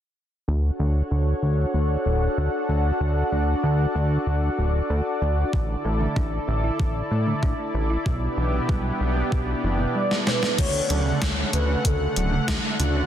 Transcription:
0.48 D2 D4 F#4 A4 C#5 F#5
0.79 D2
1.11 D2
1.42 D2
1.74 D2
2.06 D1
2.37 D2
2.69 D2
3.00 D2 D5
3.32 D2
3.63 D2
3.95 D2
4.27 D2
4.58 D1
4.90 D2
5.22 D2
5.53 A1 D3 E4 A4, kick
5.85 A1 A3
6.01 D3
6.16 A1 D4, kick
6.48 A1 D3
6.64 E4
6.79 A1 D3, kick
7.11 A2 A3
7.27 D3
7.43 A1 D4, kick
7.74 A1 D3
7.90 E4
8.06 B1 B2 B3 D4 G4, kick
8.37 B1 E3
8.53 B2
8.69 B1 G3, kick
9.00 B1 B2
9.17 B3
9.32 B1 B2, kick
9.64 F#1 E3
9.80 B2
9.95 G3 D5
10.11 snare
10.27 B2 B4, snare
10.43 B3, snare
10.58 D2 C#3 D3 A3 C#5 F#5, kick, closed hi-hat, crash
10.90 D2 F#3 D5, closed hi-hat
11.06 C#3
11.22 D2 A3 C#5, kick, snare, closed hi-hat
11.53 D2 C#3 B4, closed hi-hat
11.69 C#4
11.85 D2 C#3 A4, kick, closed hi-hat
12.16 D1 F#3, closed hi-hat
12.32 C#3
12.48 D2 A3, kick, snare, closed hi-hat
12.79 D2 C#3 F#4, closed hi-hat
12.95 C#4

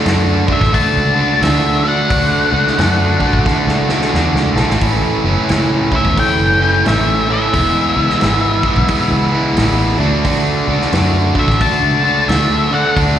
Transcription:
0.06 F#2 D3 A3 D4 F#4, snare, open hi-hat
0.47 D3 A3 D4 F#4, kick
0.52 E5
0.61 A1, kick, snare
0.73 D3 A3 D4 F#4 A5, kick, open hi-hat
0.96 C#2
1.15 D3 A3 D4 F#4
1.42 D2 D3 A3 D4 F#4 E5, snare, open hi-hat
1.83 D3 A3 D4 F#4
1.88 F#5
2.09 D2 D3 A3 D4 F#4, kick, open hi-hat
2.52 C#2 D3 A3 D4 F#4
2.67 snare
2.78 F#2 D3 A3 D4 F#4, snare, open hi-hat
3.20 D3 A3 D4 F#4, kick
3.33 A1, kick
3.46 D3 A3 D4 F#4, kick, snare
3.67 C#2, snare
3.88 D3 A3 D4 F#4, snare
4.01 snare
4.13 E2 D3 A3 D4 F#4, snare
4.34 C#2, snare
4.56 B1 D3 A3 D4 F#4, snare
4.69 A1, snare
4.81 A1 A2 E3 A3 C#4 E4, kick, open hi-hat
5.24 F#1 A2 E3 A3 C#4 E4
5.49 C#2 A2 E3 A3 C#4 E4, snare, open hi-hat
5.92 A2 E3 A3 C#4 E4 E5, kick
6.04 E2, kick
6.17 A2 E3 A3 C#4 E4 G5, kick, open hi-hat
6.40 F#1
6.60 A2 E3 A3 C#4 E4
6.86 A1 A2 E3 A3 C#4 E4 E5, snare, open hi-hat
7.28 A2 E3 A3 C#4 E4
7.33 E5
7.53 E1 E3 G#3 B3 E4, kick, open hi-hat
7.96 C#2 E3 G#3 B3 E4
8.09 snare
8.21 G#1 E3 G#3 B3 E4, snare, open hi-hat
8.63 E3 G#3 B3 E4, kick
8.76 B1, kick
8.88 E3 G#3 B3 E4, kick, open hi-hat
9.10 C#2
9.31 E3 G#3 B3 E4
9.57 A1 E3 G#3 B3 E4, snare, open hi-hat
9.98 D2 D3 A3 D4 F#4
10.25 D3 A3 D4 F#4, kick, open hi-hat
10.67 C#2 D3 A3 D4 F#4
10.81 snare
10.93 F#2 D3 A3 D4 F#4, snare, open hi-hat
11.34 D3 A3 D4 F#4, kick
11.39 E5
11.48 A1, kick, snare
11.60 D3 A3 D4 F#4 A5, kick, open hi-hat
11.83 C#2
12.02 D3 A3 D4 F#4
12.28 D2 D3 A3 D4 F#4 E5, snare, open hi-hat
12.70 D3 A3 D4 F#4
12.74 F#5
12.96 D2 D3 A3 D4 F#4, kick, open hi-hat

